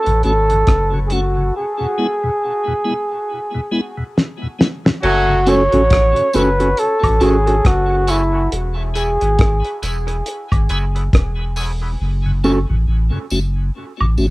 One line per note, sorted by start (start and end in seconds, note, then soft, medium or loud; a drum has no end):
0.00 0.24 A4 loud
0.06 0.23 A1 medium
0.06 0.13 F#2 medium
0.06 0.13 C#3 medium
0.06 closed hi-hat medium
0.23 0.64 G#1 medium
0.23 0.33 A3 medium
0.23 0.33 C#4 medium
0.23 0.33 F#4 medium
0.23 1.02 A4 loud
0.23 closed hi-hat medium
0.50 0.56 F#2 medium
0.50 0.56 C#3 medium
0.50 closed hi-hat medium
0.67 1.51 F#1 medium
0.67 kick loud
0.67 cross-stick loud
0.67 closed hi-hat medium
0.94 0.99 F#2 medium
0.94 0.99 C#3 medium
1.07 1.14 G#4 medium
1.07 closed hi-hat medium
1.12 1.20 A3 medium
1.12 1.20 C#4 medium
1.12 1.20 F#4 medium
1.12 1.56 F#4 medium
1.37 1.43 F#2 medium
1.37 1.43 C#3 medium
1.57 4.13 G#4 medium
1.80 1.86 E2 medium
1.80 1.86 B2 medium
1.98 2.07 G#3 medium
1.98 2.07 B3 medium
1.98 2.07 E4 medium
2.24 2.30 E2 medium
2.24 2.30 B2 medium
2.67 2.73 E2 medium
2.67 2.73 B2 medium
2.84 2.93 G#3 medium
2.84 2.93 B3 medium
2.84 2.94 E4 medium
3.54 3.61 E2 medium
3.54 3.61 B2 medium
3.71 3.81 G#3 medium
3.71 3.81 B3 medium
3.71 3.81 E4 medium
3.97 4.04 E2 medium
3.97 4.04 B2 medium
4.18 snare medium
4.42 4.48 E2 medium
4.42 4.48 B2 medium
4.59 4.68 G#3 medium
4.59 4.68 B3 medium
4.59 4.68 E4 medium
4.59 snare medium
4.85 4.91 E2 medium
4.85 4.91 B2 medium
4.85 snare medium
5.02 5.69 F#1 loud
5.02 5.38 F#3 loud
5.02 5.38 A3 loud
5.02 5.38 C#4 loud
5.02 5.38 F#4 loud
5.02 crash medium
5.06 5.51 F#4 loud
5.29 5.35 F#2 medium
5.29 5.35 C#3 medium
5.46 5.55 A3 medium
5.46 5.55 C#4 medium
5.46 5.61 C#4 medium
5.46 5.55 F#4 medium
5.46 5.61 F#4 medium
5.46 5.61 A4 medium
5.46 6.37 C#5 loud
5.46 closed hi-hat medium
5.46 tambourine medium
5.72 5.89 A1 loud
5.72 5.78 F#2 medium
5.72 5.78 C#3 medium
5.72 5.81 C#4 medium
5.72 5.80 F#4 medium
5.72 5.80 A4 medium
5.72 closed hi-hat medium
5.90 6.14 A1 loud
5.90 kick loud
5.90 cross-stick loud
5.90 closed hi-hat loud
6.16 6.22 F#2 medium
6.16 6.22 C#3 medium
6.16 closed hi-hat medium
6.33 6.74 F#1 medium
6.33 6.42 A3 medium
6.33 6.42 C#4 medium
6.33 6.48 C#4 medium
6.33 6.43 F#4 medium
6.33 6.49 F#4 medium
6.33 6.49 A4 loud
6.33 6.81 B4 loud
6.33 closed hi-hat medium
6.33 tambourine medium
6.60 6.68 C#4 medium
6.60 6.68 F#4 medium
6.60 6.67 A4 medium
6.60 closed hi-hat medium
6.77 7.24 A4 loud
6.77 closed hi-hat medium
7.02 7.20 A1 medium
7.02 7.09 F#2 medium
7.02 7.09 C#3 medium
7.02 kick medium
7.02 closed hi-hat medium
7.02 high woodblock medium
7.20 7.61 G#1 medium
7.20 7.29 A3 medium
7.20 7.29 C#4 medium
7.20 7.35 C#4 medium
7.20 7.29 F#4 medium
7.20 7.35 F#4 medium
7.20 7.68 G#4 medium
7.20 7.35 A4 medium
7.20 closed hi-hat medium
7.20 tambourine soft
7.45 7.52 F#2 medium
7.45 7.52 C#3 medium
7.45 7.55 C#4 medium
7.45 7.55 F#4 medium
7.45 7.54 A4 medium
7.45 closed hi-hat medium
7.65 8.48 F#1 loud
7.65 8.12 F#4 loud
7.65 kick loud
7.65 cross-stick loud
7.65 closed hi-hat loud
7.90 7.96 F#2 medium
7.90 7.96 C#3 medium
8.07 8.16 A3 medium
8.07 8.16 C#4 medium
8.07 8.22 C#4 loud
8.07 8.53 E4 medium
8.07 8.16 F#4 medium
8.07 8.22 F#4 medium
8.07 8.22 A4 loud
8.07 closed hi-hat medium
8.07 tambourine medium
8.33 8.39 C#3 medium
8.33 8.42 C#4 medium
8.33 8.42 F#4 medium
8.33 8.42 A4 medium
8.52 9.17 E1 loud
8.52 closed hi-hat loud
8.76 8.83 E2 medium
8.76 8.83 B2 medium
8.94 9.03 G#3 medium
8.94 9.03 B3 medium
8.94 9.09 B3 medium
8.94 9.03 E4 medium
8.94 9.09 E4 medium
8.94 9.10 G#4 medium
8.94 9.83 G#4 medium
8.94 closed hi-hat medium
8.94 tambourine medium
9.20 9.37 G#1 medium
9.20 9.27 E2 medium
9.20 9.27 B2 medium
9.20 9.29 B3 medium
9.20 9.29 E4 medium
9.20 9.29 G#4 medium
9.20 closed hi-hat medium
9.39 9.62 G#1 loud
9.39 kick loud
9.39 cross-stick loud
9.39 closed hi-hat medium
9.65 closed hi-hat medium
9.82 10.22 E1 medium
9.82 9.91 G#3 medium
9.82 9.96 B3 medium
9.82 9.91 B3 medium
9.82 9.97 E4 medium
9.82 9.91 E4 medium
9.82 9.97 G#4 medium
9.82 closed hi-hat medium
9.82 tambourine medium
10.08 10.16 B3 soft
10.08 10.16 E4 medium
10.08 10.16 G#4 medium
10.08 closed hi-hat medium
10.26 closed hi-hat loud
10.52 10.68 G#1 loud
10.52 kick medium
10.52 closed hi-hat medium
10.52 high woodblock medium
10.69 11.09 F#1 loud
10.69 10.78 G#3 medium
10.69 10.83 B3 medium
10.69 10.78 B3 medium
10.69 10.84 E4 medium
10.69 10.78 E4 medium
10.69 10.84 G#4 loud
10.69 closed hi-hat medium
10.69 tambourine soft
10.95 11.01 B2 medium
10.95 11.03 B3 medium
10.95 11.03 E4 medium
10.95 11.03 G#4 medium
10.95 closed hi-hat medium
11.13 11.96 E1 medium
11.13 kick loud
11.13 cross-stick loud
11.13 closed hi-hat loud
11.39 11.45 E2 medium
11.39 11.45 B2 medium
11.56 11.65 G#3 medium
11.56 11.70 B3 medium
11.56 11.65 B3 medium
11.56 11.71 E4 medium
11.56 11.65 E4 medium
11.56 11.71 G#4 medium
11.56 open hi-hat medium
11.56 tambourine medium
11.82 11.88 E2 medium
11.82 11.88 B2 medium
11.82 11.90 B3 medium
11.82 11.90 E4 medium
11.82 11.89 G#4 medium
12.01 12.65 F#1 loud
12.26 12.32 F#2 medium
12.26 12.32 C#3 medium
12.44 12.52 A3 medium
12.44 12.52 C#4 medium
12.44 12.58 C#4 medium
12.44 12.52 F#4 medium
12.44 12.58 F#4 medium
12.44 12.58 A4 medium
12.44 tambourine medium
12.70 12.86 A1 medium
12.70 12.75 F#2 medium
12.70 12.75 C#3 medium
12.88 13.10 A1 loud
13.12 13.18 F#2 medium
13.12 13.18 C#3 medium
13.30 13.70 F#1 medium
13.30 13.39 A3 medium
13.30 13.40 C#4 medium
13.30 13.40 F#4 medium
13.30 tambourine medium
14.00 14.16 A1 loud
14.00 14.06 F#2 medium
14.00 14.06 C#3 medium
14.00 high woodblock medium
14.18 14.30 G#1 medium
14.18 14.26 A3 medium
14.18 14.26 C#4 medium
14.18 14.27 F#4 medium
14.18 tambourine soft